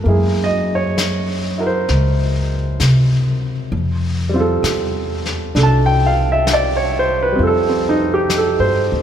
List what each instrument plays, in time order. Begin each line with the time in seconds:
0.04 upright bass F#2, grand piano G#3 A#3, brush sweep
0.08 grand piano E4 G#4
0.44 grand piano D#5
0.75 grand piano C#5
0.98 brush sweep, snare, hi-hat pedal
1.58 grand piano E4 F#4 A#4
1.66 grand piano C5
1.88 upright bass C#2, brush sweep, snare
2.80 upright bass C3, brush sweep, snare, hi-hat pedal
3.72 upright bass F2, brush sweep
4.29 grand piano G3
4.34 grand piano C4 F4
4.40 grand piano A4
4.63 upright bass E2, brush sweep, snare, hi-hat pedal
5.26 snare
5.55 upright bass C2, grand piano D4 A4, brush sweep, snare
5.63 grand piano A5
5.86 grand piano G5
6.06 grand piano F5
6.32 grand piano E5
6.47 brush sweep, snare, hi-hat pedal
6.53 grand piano D5
6.77 grand piano C#5
6.99 grand piano C5
7.23 grand piano B4
7.32 grand piano G3 C4
7.39 upright bass F2, grand piano F4, brush sweep
7.43 grand piano A4
7.69 grand piano C4
7.89 grand piano D#4
8.14 grand piano G4
8.30 brush sweep, snare, hi-hat pedal
8.38 grand piano A4
8.60 upright bass G2, grand piano C5
8.92 upright bass D#2